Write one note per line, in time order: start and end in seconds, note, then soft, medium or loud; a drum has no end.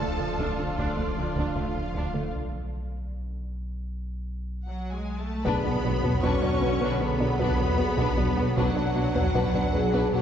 0.00 2.35 D1 medium
0.00 0.08 D2 soft
0.00 0.12 D2 medium
0.00 0.12 F3 medium
0.00 2.34 F3 medium
0.00 0.09 A3 soft
0.00 2.30 D4 medium
0.00 2.34 D4 medium
0.00 2.35 F4 medium
0.00 0.75 A4 medium
0.00 2.35 A4 medium
0.00 2.34 D5 medium
0.00 0.74 A5 medium
0.19 0.27 D2 soft
0.19 0.32 D2 medium
0.19 0.28 F3 soft
0.19 0.31 D4 soft
0.39 0.47 D2 medium
0.39 0.51 D2 medium
0.39 0.51 D3 medium
0.39 0.57 D4 medium
0.39 taiko medium
0.59 0.71 D3 medium
0.77 0.85 D2 medium
0.77 0.86 D2 medium
0.77 0.90 D2 medium
0.77 0.90 D3 medium
0.77 0.96 D4 medium
0.77 1.57 D4 medium
0.77 1.55 D5 medium
0.77 taiko medium
0.97 1.05 D2 soft
0.97 1.10 D2 medium
0.97 1.07 A3 soft
0.97 1.09 D4 medium
1.17 1.25 D2 soft
1.17 1.29 D2 medium
1.17 1.29 F3 medium
1.17 1.26 F3 soft
1.36 1.44 D2 medium
1.36 1.49 D2 medium
1.36 1.48 D3 medium
1.36 1.55 D4 medium
1.36 taiko medium
1.54 1.62 D2 soft
1.54 1.64 D2 soft
1.54 1.68 D3 medium
1.54 1.68 A3 medium
1.54 1.65 A3 soft
1.54 2.34 F4 medium
1.54 2.34 F5 medium
1.76 1.88 D2 medium
1.94 2.02 D2 medium
1.94 2.07 D2 medium
1.94 2.06 D3 medium
1.94 2.14 D4 soft
2.14 2.22 D2 soft
2.14 2.27 D3 medium
2.14 2.26 A3 medium
2.14 2.23 A3 soft
2.33 5.45 B1 medium
4.67 4.91 F#3 soft
4.67 4.92 F#3 soft
4.67 4.92 F#5 medium
4.93 5.19 G#3 soft
4.93 5.19 G#5 medium
5.19 5.46 A3 soft
5.19 5.46 A3 medium
5.19 5.45 A5 medium
5.45 8.53 B1 medium
5.45 5.53 B1 medium
5.45 5.57 B2 medium
5.45 8.53 D3 medium
5.45 8.54 D3 medium
5.45 8.53 F#3 medium
5.45 8.54 F#3 medium
5.45 5.57 B3 medium
5.45 6.22 B3 medium
5.45 6.24 B3 medium
5.45 5.64 D4 medium
5.45 5.81 G#4 medium
5.45 8.53 B4 medium
5.45 5.64 B4 medium
5.45 8.54 F#5 medium
5.45 6.23 B5 medium
5.45 taiko medium
5.45 impact medium
5.64 5.73 B1 medium
5.64 5.77 B2 medium
5.64 5.73 B3 soft
5.64 5.76 D4 medium
5.64 5.73 D4 soft
5.84 5.93 B1 medium
5.84 5.96 B2 medium
5.84 5.92 B3 medium
5.84 5.96 D4 medium
5.84 7.01 F#4 medium
5.84 5.92 F#4 soft
6.04 6.12 B1 soft
6.04 6.16 B2 medium
6.04 6.11 B3 soft
6.04 6.11 D4 soft
6.04 6.15 B4 medium
6.04 taiko low soft
6.22 6.32 B1 medium
6.22 6.35 B2 medium
6.22 6.35 B3 medium
6.22 7.01 C#4 medium
6.22 7.02 C#4 medium
6.22 6.42 D4 medium
6.22 6.42 B4 medium
6.22 7.01 C#6 medium
6.22 taiko medium
6.42 6.51 B1 soft
6.42 6.54 B2 medium
6.42 6.52 B3 soft
6.42 6.54 D4 medium
6.42 6.52 D4 soft
6.42 taiko low soft
6.62 6.71 B1 soft
6.62 6.73 B2 medium
6.62 6.72 B3 medium
6.62 6.72 F#4 medium
6.62 6.74 B4 medium
6.81 6.90 B1 medium
6.81 6.93 B2 medium
6.81 6.93 B3 medium
6.81 7.01 D4 medium
6.81 7.01 B4 medium
7.01 7.09 B1 soft
7.01 7.13 B2 medium
7.01 8.54 B3 medium
7.01 7.10 B3 medium
7.01 7.10 D4 medium
7.01 7.41 G#4 medium
7.01 7.13 B4 medium
7.01 8.57 B5 medium
7.20 7.29 B1 soft
7.20 7.32 B2 medium
7.20 7.29 B3 soft
7.20 7.32 D4 medium
7.20 7.29 F#4 medium
7.39 7.48 B1 medium
7.39 7.52 B2 medium
7.39 7.51 B3 medium
7.39 7.58 D4 medium
7.39 7.79 F#4 medium
7.39 7.59 B4 medium
7.39 taiko medium
7.59 7.71 B2 medium
7.59 taiko low soft
7.78 7.88 B1 medium
7.78 7.90 B2 medium
7.78 7.87 B3 medium
7.78 7.87 F#4 medium
7.78 8.18 G#4 medium
7.78 7.90 B4 medium
7.97 8.08 B1 medium
7.97 8.09 B2 loud
7.97 8.10 B3 medium
7.97 8.17 D4 medium
7.97 8.17 B4 medium
7.97 taiko medium
8.17 8.27 B1 soft
8.17 8.29 B2 medium
8.17 8.26 B3 medium
8.17 8.26 D4 medium
8.17 8.30 D4 medium
8.17 9.35 F#4 medium
8.17 taiko low medium
8.37 8.46 B1 medium
8.37 8.49 B3 medium
8.37 8.45 B3 medium
8.37 8.45 F#4 medium
8.37 8.49 F#4 medium
8.56 10.22 B1 medium
8.56 8.66 B1 medium
8.56 8.69 B2 medium
8.56 10.12 F#3 medium
8.56 10.22 F#3 medium
8.56 10.10 F#3 medium
8.56 10.22 F#3 medium
8.56 8.69 B3 loud
8.56 10.22 D4 medium
8.56 8.75 D4 medium
8.56 10.22 D4 medium
8.56 8.75 B4 medium
8.56 10.22 B4 medium
8.56 10.10 F#5 loud
8.56 10.22 F#5 medium
8.56 taiko medium
8.76 8.86 B1 medium
8.76 8.88 B2 medium
8.76 8.84 B3 soft
8.76 8.84 D4 soft
8.76 8.88 D4 medium
8.95 9.05 B1 medium
8.95 9.07 B2 medium
8.95 9.03 B3 soft
8.95 9.08 D4 medium
8.95 9.04 F#4 soft
9.14 9.25 B1 soft
9.14 9.27 B2 medium
9.14 9.22 B3 medium
9.14 9.23 D4 soft
9.14 9.27 B4 medium
9.14 taiko low medium
9.34 9.44 B1 medium
9.34 9.47 B2 loud
9.34 9.47 B3 medium
9.34 9.53 D4 medium
9.34 9.73 B4 medium
9.34 9.53 B4 medium
9.34 taiko medium
9.54 9.63 B1 soft
9.54 9.66 B2 medium
9.54 9.62 B3 soft
9.54 9.66 D4 medium
9.54 9.62 D4 soft
9.54 taiko low medium
9.74 9.82 B1 medium
9.74 9.86 B2 medium
9.74 9.82 B3 medium
9.74 9.82 F#4 medium
9.74 10.13 G#4 medium
9.74 9.86 B4 medium
9.92 10.02 B1 medium
9.92 10.05 B2 loud
9.92 10.05 B3 medium
9.92 10.11 D4 medium
9.92 10.11 B4 medium
10.13 10.22 B1 medium
10.13 10.22 B2 medium
10.13 10.22 F#3 medium
10.13 10.21 B3 medium
10.13 10.21 D4 medium
10.13 10.22 F#4 medium
10.13 10.22 B4 medium
10.13 10.22 F#5 medium